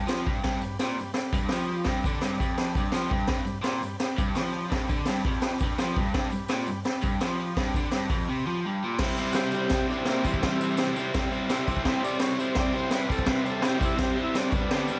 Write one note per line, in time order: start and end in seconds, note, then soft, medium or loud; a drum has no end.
0.07 0.25 F3 loud
0.07 0.40 G4 medium
0.07 0.40 B4 medium
0.07 0.41 D5 medium
0.07 snare loud
0.07 open hi-hat medium
0.07 tambourine medium
0.26 0.43 G2 loud
0.26 kick loud
0.44 0.61 G2 loud
0.44 0.78 G4 medium
0.44 0.77 B4 medium
0.44 kick loud
0.44 snare loud
0.44 open hi-hat medium
0.50 0.78 D5 medium
0.62 0.77 G2 medium
0.62 tambourine medium
0.79 0.97 A#2 loud
0.79 1.12 G4 medium
0.79 1.11 B4 medium
0.79 1.11 D5 medium
0.79 snare loud
0.79 open hi-hat medium
0.79 tambourine medium
0.98 1.12 G2 medium
0.98 tambourine medium
1.13 1.46 G4 medium
1.13 1.47 B4 medium
1.13 1.47 D5 medium
1.13 snare loud
1.13 open hi-hat medium
1.13 tambourine medium
1.33 1.51 G2 medium
1.33 kick loud
1.33 tambourine medium
1.49 1.87 F3 loud
1.49 1.82 G4 medium
1.49 1.82 B4 medium
1.49 1.82 D5 loud
1.49 snare loud
1.49 open hi-hat medium
1.49 tambourine medium
1.84 2.04 G2 loud
1.84 2.16 G4 medium
1.84 2.17 B4 medium
1.84 2.16 D5 medium
1.84 kick loud
1.84 snare loud
1.84 open hi-hat medium
1.89 tambourine soft
2.04 2.22 D3 loud
2.04 kick loud
2.04 tambourine medium
2.17 2.51 G4 medium
2.17 2.51 B4 medium
2.17 2.52 D5 medium
2.21 2.39 G2 loud
2.21 snare loud
2.21 open hi-hat medium
2.21 tambourine medium
2.40 2.75 F2 loud
2.40 kick medium
2.40 tambourine medium
2.53 2.87 G4 medium
2.53 2.87 B4 medium
2.53 2.88 D5 medium
2.58 snare loud
2.58 open hi-hat medium
2.58 tambourine medium
2.75 2.93 G2 medium
2.75 kick medium
2.75 tambourine medium
2.89 3.22 G4 medium
2.89 3.23 B4 medium
2.89 3.23 D5 medium
2.89 snare loud
2.89 open hi-hat medium
2.94 3.11 F3 medium
2.94 tambourine medium
3.10 3.28 G2 loud
3.10 kick medium
3.23 3.58 G4 medium
3.23 3.58 B4 medium
3.23 3.59 D5 medium
3.27 3.44 G2 loud
3.27 kick loud
3.27 snare loud
3.27 open hi-hat medium
3.45 3.60 G2 medium
3.45 tambourine medium
3.62 3.81 A#2 loud
3.62 3.96 G4 medium
3.62 3.96 B4 medium
3.62 3.97 D5 medium
3.62 snare loud
3.62 open hi-hat medium
3.62 tambourine medium
3.81 3.96 G2 medium
3.81 tambourine medium
3.99 4.32 G4 medium
3.99 4.32 B4 medium
3.99 4.32 D5 medium
3.99 snare loud
3.99 open hi-hat medium
3.99 tambourine medium
4.18 4.35 G2 loud
4.18 kick loud
4.18 tambourine medium
4.33 4.71 F3 loud
4.33 4.67 G4 medium
4.33 4.66 B4 medium
4.33 4.67 D5 medium
4.33 snare loud
4.33 open hi-hat medium
4.33 tambourine medium
4.67 4.88 G2 loud
4.67 5.02 G4 medium
4.67 5.02 B4 medium
4.67 5.02 D5 medium
4.72 kick loud
4.72 snare loud
4.72 open hi-hat medium
4.89 5.07 D3 loud
4.89 kick loud
4.89 tambourine medium
5.06 5.26 G2 loud
5.06 5.39 G4 medium
5.06 5.39 B4 medium
5.06 5.39 D5 loud
5.06 snare loud
5.06 open hi-hat medium
5.06 tambourine medium
5.25 5.61 F2 loud
5.25 kick loud
5.41 5.74 G4 medium
5.41 5.74 B4 medium
5.41 5.75 D5 loud
5.41 snare loud
5.41 open hi-hat medium
5.41 tambourine medium
5.59 5.79 G2 loud
5.59 kick loud
5.59 tambourine medium
5.75 5.96 F3 loud
5.75 6.09 G4 medium
5.75 6.09 B4 medium
5.75 6.09 D5 medium
5.75 snare loud
5.75 open hi-hat medium
5.75 tambourine medium
5.96 6.13 G2 loud
5.96 kick loud
6.13 6.31 G2 loud
6.13 6.44 G4 medium
6.13 6.45 B4 medium
6.13 6.46 D5 medium
6.13 kick loud
6.13 snare loud
6.13 open hi-hat medium
6.32 6.46 G2 medium
6.32 tambourine medium
6.46 6.80 G4 medium
6.46 6.80 B4 medium
6.46 6.81 D5 medium
6.46 snare loud
6.46 tambourine medium
6.50 6.68 A#2 loud
6.50 open hi-hat medium
6.66 6.82 G2 medium
6.66 tambourine medium
6.84 7.17 G4 medium
6.84 7.17 B4 medium
6.84 7.18 D5 medium
6.84 snare loud
6.84 open hi-hat medium
6.84 tambourine medium
7.01 7.20 G2 loud
7.01 kick loud
7.01 tambourine medium
7.21 7.57 F3 medium
7.21 7.54 G4 medium
7.21 7.54 B4 medium
7.21 7.54 D5 medium
7.21 snare loud
7.21 open hi-hat medium
7.21 tambourine medium
7.56 7.75 G2 loud
7.56 7.89 G4 medium
7.56 7.90 B4 medium
7.56 7.90 D5 medium
7.56 kick loud
7.56 snare loud
7.56 open hi-hat medium
7.74 7.93 D3 loud
7.74 kick loud
7.74 tambourine medium
7.91 8.10 G2 loud
7.91 8.25 G4 medium
7.91 8.26 B4 medium
7.91 8.26 D5 medium
7.91 snare loud
7.91 open hi-hat medium
7.91 tambourine medium
8.10 8.28 F2 loud
8.10 kick loud
8.10 tambourine medium
8.28 8.46 C3 loud
8.28 8.60 G4 medium
8.28 8.61 B4 medium
8.28 8.61 D5 medium
8.46 8.64 F3 loud
8.64 8.82 G2 loud
8.64 8.96 G4 medium
8.64 8.96 B4 medium
8.64 8.97 D5 medium
8.84 9.00 A#2 loud
8.99 9.18 C3 medium
8.99 9.18 G3 medium
8.99 9.19 C4 medium
8.99 9.32 E4 loud
8.99 9.20 E4 loud
8.99 9.33 G4 loud
8.99 9.33 C5 loud
8.99 kick loud
8.99 snare loud
8.99 crash loud
8.99 crash medium
9.17 9.35 C3 medium
9.17 9.35 G3 medium
9.17 9.37 C4 medium
9.17 9.37 E4 loud
9.17 tambourine medium
9.33 9.53 C3 medium
9.33 9.55 G3 medium
9.33 9.35 F#4 medium
9.33 9.88 G4 loud
9.33 9.52 G4 medium
9.33 snare loud
9.33 tambourine medium
9.33 crash medium
9.37 9.54 C4 loud
9.37 9.52 E4 medium
9.37 9.55 E4 medium
9.37 9.53 C5 medium
9.52 9.72 C3 loud
9.52 9.72 G3 loud
9.52 9.73 C4 loud
9.52 9.70 E4 medium
9.52 9.74 E4 loud
9.52 9.70 G4 medium
9.52 9.70 C5 medium
9.52 tambourine medium
9.70 9.90 C3 medium
9.70 9.90 G3 medium
9.70 9.91 C4 medium
9.70 kick loud
9.70 snare loud
9.70 tambourine medium
9.70 crash medium
9.74 9.92 E4 medium
9.74 10.05 E4 medium
9.74 10.05 G4 medium
9.74 10.05 C5 medium
9.90 10.08 C3 loud
9.90 10.09 G3 loud
9.90 10.10 C4 loud
9.90 10.07 D4 medium
9.90 10.10 E4 loud
9.90 tambourine soft
10.05 10.26 C3 medium
10.05 10.27 G3 medium
10.05 10.25 A#3 medium
10.05 snare loud
10.05 tambourine medium
10.05 crash medium
10.10 10.27 C4 loud
10.10 10.28 E4 loud
10.10 10.41 E4 medium
10.10 10.41 G4 medium
10.10 10.42 C5 medium
10.24 10.43 C3 loud
10.24 10.93 E3 medium
10.24 10.44 G3 loud
10.24 10.96 G3 medium
10.24 10.44 C4 loud
10.24 10.46 E4 loud
10.24 kick medium
10.24 tambourine medium
10.34 kick medium
10.43 10.61 C3 loud
10.43 10.61 G3 loud
10.43 10.63 C4 loud
10.43 10.76 E4 medium
10.43 10.63 E4 loud
10.43 10.76 G4 medium
10.43 10.76 C5 loud
10.43 kick loud
10.43 snare loud
10.43 crash medium
10.61 10.78 C3 medium
10.61 10.79 G3 medium
10.61 10.79 C4 medium
10.61 10.80 E4 loud
10.61 tambourine medium
10.77 10.96 C3 medium
10.77 10.97 G3 medium
10.77 10.97 C4 loud
10.77 10.94 E4 medium
10.77 10.99 E4 medium
10.77 10.94 G4 medium
10.77 10.94 C5 loud
10.77 snare loud
10.77 tambourine loud
10.77 crash medium
10.95 11.14 C3 loud
10.95 11.15 G3 loud
10.95 11.15 C4 loud
10.95 11.11 E4 medium
10.95 11.12 G4 medium
10.95 11.12 C5 medium
10.95 11.01 A5 medium
10.95 tambourine medium
10.99 11.17 E4 loud
11.05 11.14 G5 medium
11.14 11.30 C3 medium
11.14 11.31 G3 medium
11.14 11.32 C4 loud
11.14 11.46 E4 medium
11.14 11.32 E4 medium
11.14 11.46 G4 medium
11.14 11.47 C5 loud
11.14 11.40 G5 medium
11.14 kick loud
11.14 snare loud
11.14 tambourine medium
11.14 crash medium
11.30 11.50 C3 medium
11.30 11.50 G3 loud
11.30 11.52 C4 loud
11.30 11.51 E4 loud
11.30 tambourine soft
11.41 11.49 F5 medium
11.49 11.67 C3 medium
11.49 11.68 G3 medium
11.49 11.69 C4 medium
11.49 11.82 E4 medium
11.49 11.70 E4 medium
11.49 11.82 G4 medium
11.49 11.82 C5 loud
11.49 11.83 E5 medium
11.49 snare loud
11.49 tambourine loud
11.49 crash medium
11.67 11.86 C3 medium
11.67 11.86 G3 medium
11.67 11.87 C4 loud
11.67 11.88 E4 loud
11.67 kick medium
11.67 tambourine medium
11.77 kick medium
11.85 12.02 C3 loud
11.85 12.03 G3 medium
11.85 12.04 C4 loud
11.85 12.17 E4 loud
11.85 12.04 E4 loud
11.85 12.18 G4 loud
11.85 12.18 C5 loud
11.85 kick loud
11.85 snare loud
11.85 crash medium
12.03 12.19 C3 medium
12.03 12.20 G3 medium
12.03 12.22 C4 loud
12.03 12.23 E4 medium
12.03 12.21 D5 loud
12.03 tambourine medium
12.19 12.36 C3 medium
12.19 12.38 G3 medium
12.19 12.38 C4 loud
12.19 12.36 E4 medium
12.19 12.36 G4 medium
12.19 12.36 C5 medium
12.19 12.39 C#5 medium
12.19 snare loud
12.19 tambourine loud
12.19 crash medium
12.23 12.38 E4 loud
12.37 12.56 C3 loud
12.37 12.58 G3 loud
12.37 12.57 C4 loud
12.37 12.53 E4 medium
12.37 12.58 E4 loud
12.37 12.54 G4 medium
12.37 12.54 C5 medium
12.37 12.57 C5 loud
12.37 tambourine medium
12.54 12.71 C3 medium
12.54 12.73 G3 medium
12.54 12.73 C4 medium
12.54 12.87 E4 medium
12.54 12.88 G4 medium
12.54 12.88 C5 medium
12.54 kick loud
12.54 snare loud
12.54 crash medium
12.59 12.74 E4 loud
12.59 12.75 D5 loud
12.59 tambourine medium
12.72 12.89 C3 loud
12.72 12.91 G3 loud
12.72 12.91 C4 loud
12.72 12.91 E4 loud
12.72 12.92 C5 medium
12.72 tambourine soft
12.90 13.06 C3 medium
12.90 13.08 G3 medium
12.90 13.08 C4 medium
12.90 13.23 E4 medium
12.90 13.08 E4 loud
12.90 13.23 G4 medium
12.90 13.24 C5 medium
12.90 snare loud
12.90 tambourine medium
12.90 crash medium
12.95 13.11 B4 loud
13.07 13.24 C3 medium
13.07 13.26 G3 medium
13.07 13.27 C4 loud
13.07 13.27 E4 loud
13.07 kick medium
13.11 13.28 A4 medium
13.11 tambourine medium
13.19 kick medium
13.25 13.42 C3 loud
13.25 13.45 G3 loud
13.25 13.44 C4 loud
13.25 13.59 E4 medium
13.25 13.44 E4 loud
13.25 13.58 G4 medium
13.25 13.58 C5 loud
13.25 kick loud
13.25 snare loud
13.25 crash medium
13.30 13.46 B4 medium
13.30 tambourine soft
13.43 13.60 C3 medium
13.43 13.62 G3 medium
13.43 13.62 C4 loud
13.43 13.62 E4 loud
13.43 tambourine medium
13.49 13.65 A4 medium
13.59 13.78 C3 medium
13.59 13.79 G3 medium
13.59 13.76 E4 medium
13.59 13.77 G4 medium
13.59 13.78 C5 medium
13.59 snare loud
13.59 crash medium
13.63 13.79 C4 medium
13.63 13.79 E4 loud
13.63 tambourine medium
13.68 13.83 G4 medium
13.77 13.95 C3 loud
13.77 13.96 G3 loud
13.77 13.96 C4 loud
13.77 13.95 E4 medium
13.77 13.97 E4 loud
13.77 13.96 G4 medium
13.77 13.96 C5 medium
13.77 kick medium
13.82 14.00 E4 medium
13.82 tambourine medium
13.96 14.14 C3 medium
13.96 14.15 G3 medium
13.96 14.16 C4 medium
13.96 14.16 E4 medium
13.96 14.31 E4 medium
13.96 14.31 G4 medium
13.96 14.31 C5 medium
13.96 kick loud
13.96 snare loud
13.96 tambourine medium
13.96 crash medium
14.02 14.18 G4 medium
14.15 14.32 C3 medium
14.15 14.34 G3 loud
14.15 14.34 C4 loud
14.15 14.35 E4 loud
14.23 14.38 E4 medium
14.32 14.51 C3 medium
14.32 14.54 G3 medium
14.32 14.52 C4 medium
14.32 14.52 E4 medium
14.32 14.49 G4 medium
14.32 14.52 C5 medium
14.32 snare loud
14.32 tambourine medium
14.32 crash medium
14.36 14.53 D4 loud
14.36 14.52 E4 medium
14.50 14.69 G2 loud
14.50 14.69 D3 loud
14.50 14.52 C#4 medium
14.50 14.99 D4 medium
14.50 14.99 G4 medium
14.50 14.99 B4 medium
14.50 kick loud
14.50 tambourine medium
14.54 14.71 G3 loud
14.54 14.72 B3 loud
14.54 14.99 D4 loud
14.54 14.73 D4 loud
14.70 14.88 G2 loud
14.70 14.89 D3 loud
14.70 14.90 G3 loud
14.70 14.91 B3 loud
14.70 14.91 D4 loud
14.70 snare loud
14.70 crash medium
14.88 14.99 G2 medium
14.88 14.99 D3 medium
14.88 14.99 G3 loud
14.88 14.99 B3 medium
14.88 14.99 D4 loud
14.88 tambourine medium